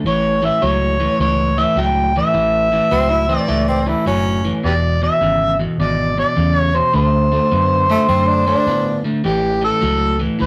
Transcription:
0.04 fingered electric bass A1, clean electric guitar A2 E3, harmonica C#5
0.42 clean electric guitar A2 E3, harmonica E5
0.62 fingered electric bass C#2, clean electric guitar A2 F#3, harmonica C#5
1.00 clean electric guitar A2 E3
1.19 fingered electric bass C#2, clean electric guitar A2 E3, harmonica C#5
1.58 clean electric guitar A2 E3, harmonica E5
1.76 fingered electric bass C#2, clean electric guitar A2 F#3, harmonica G5
2.16 clean electric guitar A2 E3, harmonica E5
2.34 fingered electric bass A1, clean electric guitar A2 E3
2.72 clean electric guitar A2 E3
2.91 fingered electric bass C#2, clean electric guitar A2 F#3, tenor saxophone C4
3.10 tenor saxophone E4
3.28 clean electric guitar A2 E3, tenor saxophone C4
3.39 harmonica D5
3.48 fingered electric bass C#2, clean electric guitar A2 E3, tenor saxophone A3
3.68 tenor saxophone C4
3.86 clean electric guitar A2 E3, tenor saxophone E4
4.06 fingered electric bass F#1, clean electric guitar A2 F#3, tenor saxophone C#4
4.44 clean electric guitar A2 E3
4.64 fingered electric bass E1, clean electric guitar E2 B2, harmonica G4 B4 D5
5.02 clean electric guitar E2 B2, harmonica E5
5.21 fingered electric bass G#1, clean electric guitar E2 C#3
5.59 clean electric guitar E2 B2
5.78 fingered electric bass G#1, clean electric guitar E2 B2, harmonica D5
6.18 clean electric guitar E2 B2, harmonica D5
6.36 clean electric guitar E2 C#3, fingered electric bass E2
6.57 harmonica C#5
6.75 clean electric guitar E2 B2, harmonica C5
6.94 fingered electric bass D2, clean electric guitar D3 A3, harmonica C5
7.32 clean electric guitar D3 A3
7.52 fingered electric bass F#2, clean electric guitar D3 B3
7.90 clean electric guitar D3 A3, tenor saxophone A3
8.08 fingered electric bass F#2, clean electric guitar D3 A3, tenor saxophone C4
8.27 tenor saxophone D4
8.47 clean electric guitar D3 A3, tenor saxophone D4
8.67 fingered electric bass A2, clean electric guitar D3 B3
9.04 clean electric guitar D3 A3
9.24 fingered electric bass A1, clean electric guitar A2 E3, harmonica G4
9.61 clean electric guitar A2 E3, harmonica A4
9.81 fingered electric bass C#2, clean electric guitar A2 F#3
10.19 clean electric guitar A2 E3
10.39 fingered electric bass C#2, clean electric guitar A2 E3, harmonica C#5

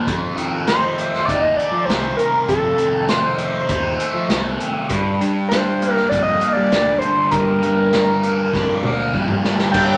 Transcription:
Already playing: distorted electric guitar F3 D#4
0.07 picked electric bass F2, distorted electric guitar F2, kick, closed hi-hat
0.35 picked electric bass F2, distorted electric guitar D#3, closed hi-hat
0.67 distorted electric guitar D#4, analog synth lead C5, snare, closed hi-hat
0.98 distorted electric guitar A3, closed hi-hat
1.14 snare
1.25 picked electric bass D#2, distorted electric guitar D#4, analog synth lead D5, kick, closed hi-hat
1.41 analog synth lead D#5
1.56 distorted electric guitar A3, analog synth lead D5, closed hi-hat
1.71 picked electric bass F3
1.85 picked electric bass C2, distorted electric guitar D#3, analog synth lead C5
1.90 snare, closed hi-hat
2.17 distorted electric guitar C3, analog synth lead A#4, closed hi-hat
2.48 picked electric bass F2, distorted electric guitar F2, analog synth lead A4, kick, closed hi-hat
2.78 picked electric bass F2, distorted electric guitar D#3, closed hi-hat
3.09 distorted electric guitar D#4, analog synth lead C5, snare, closed hi-hat
3.38 distorted electric guitar A3, closed hi-hat
3.68 picked electric bass D#2, distorted electric guitar D#4, kick, closed hi-hat
3.99 distorted electric guitar A3, closed hi-hat
4.14 picked electric bass F3
4.29 picked electric bass C2, distorted electric guitar D#3, snare, closed hi-hat
4.60 distorted electric guitar C3, closed hi-hat
4.89 picked electric bass G2, distorted electric guitar G2, kick, closed hi-hat
5.21 picked electric bass G2, distorted electric guitar G3, closed hi-hat
5.48 analog synth lead C5, snare, closed hi-hat
5.53 distorted electric guitar D4
5.82 distorted electric guitar A#3, closed hi-hat
5.92 analog synth lead A#4
5.97 snare
6.09 picked electric bass F2, distorted electric guitar D4, analog synth lead D5, kick, closed hi-hat
6.23 analog synth lead D#5
6.41 distorted electric guitar A#3, closed hi-hat
6.53 picked electric bass G3, analog synth lead D5
6.71 picked electric bass D2, distorted electric guitar G3, snare, closed hi-hat
6.98 analog synth lead C5, closed hi-hat
7.04 distorted electric guitar D3
7.31 picked electric bass G2, distorted electric guitar G2, analog synth lead A#4, kick, closed hi-hat
7.62 picked electric bass G2, distorted electric guitar G3, closed hi-hat
7.93 distorted electric guitar D4, snare, closed hi-hat
8.23 distorted electric guitar A#3, closed hi-hat
8.53 picked electric bass F2, distorted electric guitar D4, kick, snare
8.83 picked electric bass D2, distorted electric guitar A#3, mid tom
9.14 picked electric bass F2, distorted electric guitar G3, kick
9.28 mid tom
9.43 picked electric bass G2, distorted electric guitar D3, snare
9.59 snare
9.72 distorted electric guitar G2 D3 G3, picked electric bass G2, tonewheel organ G3 A#3 D4 G4, analog synth lead G5, kick, crash

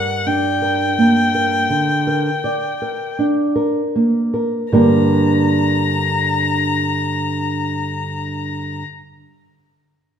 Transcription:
Already playing: nylon-string guitar G2 A#4 D5, violin F#5
0.26 nylon-string guitar D4, violin G5
0.62 nylon-string guitar A#4
0.98 nylon-string guitar A#3
1.35 nylon-string guitar A#4
1.70 nylon-string guitar D3
2.07 nylon-string guitar A#4
2.44 nylon-string guitar D5
2.82 nylon-string guitar A#4
3.19 nylon-string guitar D4
3.56 nylon-string guitar A#4
3.96 nylon-string guitar A#3
4.34 nylon-string guitar A#4
4.72 nylon-string guitar G2 D3 A#3 D4 G4 A#4, violin A#5

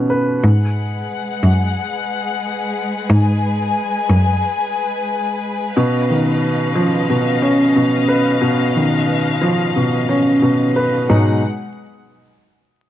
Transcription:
Already playing: upright piano B2 D#3 F3 C#4
0.10 upright piano B4
0.43 cello G#2, string section G#3 G#4 B4 F#5
1.43 cello F#2
3.09 cello G#2, string section G#5
4.10 cello F#2
5.76 upright piano B2, string section C#4 D#5 F5
6.10 upright piano D#3
6.75 upright piano F3
7.10 upright piano B2
7.42 upright piano C#4
7.76 upright piano B2
8.09 upright piano B4
8.42 upright piano B2
8.76 upright piano D#3
9.41 upright piano F3
9.76 upright piano B2
10.09 upright piano C#4
10.42 upright piano B2
10.76 upright piano B4
11.09 cello G#2, upright piano B2 F#3 G#3 D#4, string section G#3 G#4 B4 F#5

